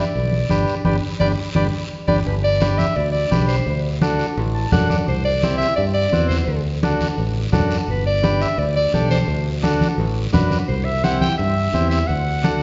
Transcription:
0.00 0.85 D5 medium
0.15 0.43 B1 medium
0.15 high conga soft
0.15 long guiro medium
0.32 high conga medium
0.50 0.65 G1 medium
0.50 0.75 D4 medium
0.50 0.75 G4 medium
0.50 0.75 B4 medium
0.50 high conga medium
0.50 short guiro medium
0.68 short guiro medium
0.85 0.99 G1 medium
0.85 0.97 D4 medium
0.85 0.96 G4 medium
0.85 0.96 B4 medium
0.85 0.94 D5 medium
0.85 high conga medium
0.85 long guiro medium
1.20 1.34 G1 medium
1.20 1.32 D4 medium
1.20 1.32 G4 medium
1.20 1.32 B4 medium
1.20 1.28 D5 loud
1.20 high conga medium
1.20 long guiro medium
1.55 1.69 G1 medium
1.55 1.67 D4 medium
1.55 1.67 G4 medium
1.55 1.67 B4 medium
1.55 1.64 D5 medium
1.55 high conga medium
1.55 long guiro medium
2.07 2.21 G1 medium
2.07 2.20 D4 loud
2.07 2.20 G4 loud
2.07 2.20 B4 loud
2.07 2.16 D5 medium
2.07 high conga medium
2.07 long guiro medium
2.26 2.82 G1 medium
2.26 2.34 B4 medium
2.26 high conga soft
2.26 long guiro medium
2.44 2.80 D5 loud
2.60 2.86 D4 medium
2.60 2.86 G4 medium
2.60 2.86 B4 medium
2.60 high conga loud
2.60 short guiro medium
2.78 2.98 E5 loud
2.78 high conga medium
2.78 short guiro medium
2.96 3.24 D2 medium
2.96 3.11 D5 medium
2.96 long guiro medium
3.12 3.45 D5 loud
3.12 high conga soft
3.31 3.60 B1 medium
3.31 3.56 D4 medium
3.31 3.56 G4 medium
3.31 3.56 B4 medium
3.31 high conga medium
3.31 short guiro medium
3.47 3.81 C5 medium
3.47 short guiro medium
3.66 4.23 D2 medium
3.66 high conga soft
3.66 long guiro medium
4.01 4.26 D4 medium
4.01 4.26 F#4 medium
4.01 4.27 A4 medium
4.01 high conga medium
4.01 short guiro medium
4.19 short guiro medium
4.37 4.65 A1 loud
4.37 long guiro medium
4.55 4.71 A5 medium
4.55 high conga soft
4.72 5.00 F#2 medium
4.72 4.97 D4 medium
4.72 4.97 F#4 medium
4.72 4.97 A4 medium
4.72 4.88 F#5 medium
4.72 high conga medium
4.72 low conga medium
4.72 short guiro medium
4.90 5.06 D5 medium
4.90 high conga medium
4.90 short guiro medium
5.08 5.64 C2 medium
5.08 5.24 C5 medium
5.08 high conga soft
5.08 long guiro medium
5.24 5.57 D5 loud
5.43 5.67 C4 medium
5.43 5.68 E4 medium
5.43 5.68 G4 medium
5.43 high conga loud
5.43 short guiro medium
5.58 5.75 E5 loud
5.58 short guiro medium
5.76 6.06 G2 loud
5.76 5.84 D5 medium
5.76 long guiro medium
5.94 6.27 D5 loud
5.94 high conga soft
6.13 6.41 E2 medium
6.13 6.37 C4 medium
6.13 6.37 E4 medium
6.13 6.37 F#4 medium
6.13 high conga medium
6.13 short guiro medium
6.28 6.62 C5 medium
6.28 high conga medium
6.28 short guiro medium
6.48 7.04 D2 medium
6.48 high conga soft
6.48 long guiro medium
6.83 7.08 D4 medium
6.83 7.08 F#4 medium
6.83 7.08 A4 medium
6.83 high conga loud
6.83 short guiro medium
7.01 high conga medium
7.01 short guiro medium
7.18 7.46 A1 medium
7.18 long guiro medium
7.37 high conga soft
7.52 7.81 F#2 medium
7.52 7.77 D4 medium
7.52 7.78 F#4 medium
7.52 7.78 A4 medium
7.52 high conga medium
7.52 low conga medium
7.52 short guiro medium
7.71 short guiro medium
7.88 8.44 G1 medium
7.88 8.06 B4 medium
7.88 high conga soft
7.88 long guiro medium
8.06 8.43 D5 loud
8.23 8.48 D4 medium
8.23 8.48 G4 medium
8.23 8.48 B4 medium
8.23 high conga loud
8.23 short guiro medium
8.41 8.60 E5 loud
8.41 short guiro medium
8.58 8.86 D2 medium
8.58 8.75 D5 medium
8.58 long guiro medium
8.76 9.08 D5 loud
8.76 high conga soft
8.93 9.22 B1 medium
8.93 9.18 D4 medium
8.93 9.18 G4 medium
8.93 9.19 A4 medium
8.93 high conga medium
8.93 short guiro medium
9.10 9.43 C5 medium
9.10 high conga medium
9.10 short guiro medium
9.28 9.84 D2 medium
9.28 high conga soft
9.28 long guiro medium
9.63 9.88 D4 medium
9.63 9.88 F#4 medium
9.63 9.88 A4 loud
9.63 high conga loud
9.63 short guiro medium
9.81 high conga medium
9.81 short guiro medium
9.98 10.26 A1 loud
9.98 long guiro medium
10.17 high conga soft
10.33 10.61 F#2 medium
10.33 10.58 D4 medium
10.33 10.58 F#4 medium
10.33 10.58 B4 medium
10.33 high conga medium
10.33 low conga medium
10.33 short guiro medium
10.51 high conga medium
10.51 short guiro medium
10.68 11.25 C2 medium
10.68 10.86 C5 medium
10.68 high conga soft
10.68 long guiro medium
10.84 11.05 E5 loud
11.04 11.29 C4 medium
11.04 11.29 E4 medium
11.04 11.29 G4 medium
11.04 11.20 F#5 loud
11.04 high conga medium
11.04 short guiro medium
11.21 11.37 G5 loud
11.21 high conga medium
11.21 short guiro medium
11.37 11.67 G2 medium
11.37 11.87 E5 loud
11.37 long guiro medium
11.57 high conga soft
11.74 12.02 E2 medium
11.74 11.99 C4 medium
11.74 11.99 E4 medium
11.74 11.99 G4 medium
11.74 high conga medium
11.74 short guiro medium
11.89 12.09 E5 loud
11.89 short guiro medium
12.07 12.63 D2 medium
12.07 12.63 F#5 medium
12.07 high conga soft
12.07 long guiro medium
12.43 12.63 D4 medium
12.43 12.63 F#4 medium
12.43 12.63 A4 medium
12.43 high conga loud
12.43 short guiro medium

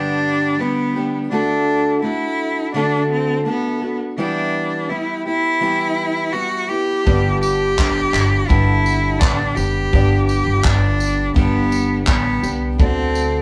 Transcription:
0.00 0.60 G2 medium
0.00 1.31 D3 loud
0.00 0.58 G3 medium
0.00 0.59 B3 medium
0.00 0.61 D4 loud
0.00 0.62 D4 loud
0.00 0.61 G4 medium
0.59 0.96 G3 medium
0.59 0.96 B3 medium
0.59 1.14 B3 medium
0.59 0.96 D4 medium
0.59 0.95 G4 medium
0.96 1.31 G3 soft
0.96 1.32 B3 medium
0.96 1.31 D4 medium
0.96 1.32 G4 medium
1.31 2.04 D3 medium
1.31 2.01 A3 medium
1.31 2.00 D4 loud
1.31 2.03 D4 medium
1.31 2.04 F#4 medium
1.31 2.05 A4 medium
2.02 2.73 A3 medium
2.02 2.74 D4 medium
2.02 2.71 E4 loud
2.02 2.75 F#4 medium
2.02 2.75 A4 medium
2.74 3.47 D3 medium
2.74 3.44 A3 medium
2.74 3.09 D4 loud
2.74 3.45 D4 medium
2.74 3.46 F#4 medium
2.74 3.47 A4 medium
3.12 3.45 C4 medium
3.45 3.82 A3 medium
3.45 3.97 B3 medium
3.45 3.83 D4 medium
3.45 3.82 F#4 medium
3.45 3.80 A4 medium
3.81 4.18 D4 soft
3.81 4.19 F#4 medium
3.81 4.18 A4 medium
4.18 4.90 E3 medium
4.18 4.89 G3 medium
4.18 4.90 B3 medium
4.18 4.91 D4 loud
4.18 4.90 E4 medium
4.18 4.92 G4 medium
4.89 5.26 G3 medium
4.89 5.27 B3 medium
4.89 5.25 E4 medium
4.89 5.26 E4 medium
4.89 5.24 G4 medium
5.26 5.60 B3 soft
5.26 6.35 E4 loud
5.26 5.62 E4 soft
5.26 5.62 G4 soft
5.61 6.34 E3 medium
5.61 6.33 G3 medium
5.61 6.34 B3 medium
5.61 6.34 E4 loud
5.61 6.68 G4 loud
6.33 6.70 G3 medium
6.33 6.70 B3 medium
6.33 6.69 E4 medium
6.33 6.72 F#4 loud
6.68 7.05 B3 soft
6.68 7.06 E4 soft
6.68 7.05 G4 medium
6.68 7.40 G4 loud
7.05 8.10 G1 loud
7.05 7.77 G2 medium
7.05 8.48 D3 medium
7.05 7.76 G3 medium
7.05 9.88 B3 medium
7.05 7.77 B3 medium
7.05 9.89 D4 medium
7.05 7.79 D4 medium
7.05 7.78 G4 medium
7.05 9.90 G4 medium
7.05 9.90 D5 medium
7.05 kick loud
7.41 8.49 G4 loud
7.41 tambourine medium
7.77 8.48 G3 medium
7.77 8.49 B3 medium
7.77 8.50 D4 medium
7.77 8.49 G4 medium
7.77 kick loud
7.77 clap loud
8.14 8.47 G1 loud
8.14 clap loud
8.14 tambourine medium
8.47 9.18 G1 loud
8.47 9.21 G2 medium
8.47 9.93 D3 medium
8.47 9.18 G3 medium
8.47 9.20 B3 loud
8.47 9.21 D4 medium
8.47 9.21 E4 loud
8.47 9.21 G4 medium
8.47 kick loud
8.86 tambourine medium
9.19 9.54 A1 loud
9.19 9.56 G3 medium
9.19 9.57 B3 medium
9.19 9.57 D4 loud
9.19 9.56 D4 medium
9.19 9.55 G4 medium
9.19 kick loud
9.19 clap loud
9.56 9.90 F#1 medium
9.56 9.92 G3 soft
9.56 9.93 B3 medium
9.56 9.93 D4 medium
9.56 10.27 G4 loud
9.56 9.93 G4 medium
9.56 tambourine medium
9.92 10.43 G1 loud
9.92 10.65 G2 medium
9.92 11.35 D3 medium
9.92 10.62 G3 medium
9.92 12.04 B3 medium
9.92 10.64 B3 medium
9.92 12.05 D4 medium
9.92 10.66 D4 medium
9.92 12.05 G4 medium
9.92 10.66 G4 medium
9.92 12.06 D5 medium
9.92 kick loud
10.27 10.66 G4 loud
10.27 tambourine medium
10.46 10.63 G1 loud
10.63 11.33 G1 loud
10.63 11.35 G3 medium
10.63 11.35 B3 medium
10.63 11.35 D4 loud
10.63 11.36 D4 medium
10.63 11.36 G4 medium
10.63 kick loud
10.63 clap loud
11.00 tambourine medium
11.34 12.04 G1 medium
11.34 12.07 G2 medium
11.34 12.78 D3 medium
11.34 12.04 G3 medium
11.34 12.04 B3 loud
11.34 12.05 B3 medium
11.34 12.07 D4 loud
11.34 12.08 G4 loud
11.34 kick loud
11.72 tambourine medium
12.06 12.41 A1 medium
12.06 12.43 G3 medium
12.06 12.43 B3 medium
12.06 12.79 B3 soft
12.06 12.58 B3 loud
12.06 12.43 D4 medium
12.06 12.78 D4 soft
12.06 12.80 G4 soft
12.06 12.41 G4 medium
12.06 12.81 D5 medium
12.06 kick loud
12.06 clap loud
12.43 12.77 C2 medium
12.43 12.79 G3 soft
12.43 12.79 B3 soft
12.43 12.79 D4 soft
12.43 12.79 G4 medium
12.43 tambourine medium
12.78 13.42 D2 loud
12.78 13.42 D3 medium
12.78 13.42 A3 medium
12.78 13.42 C4 loud
12.78 13.42 D4 medium
12.78 13.42 F#4 medium
12.78 13.42 A4 medium
12.78 13.42 D5 medium
12.78 kick loud
13.15 tambourine medium

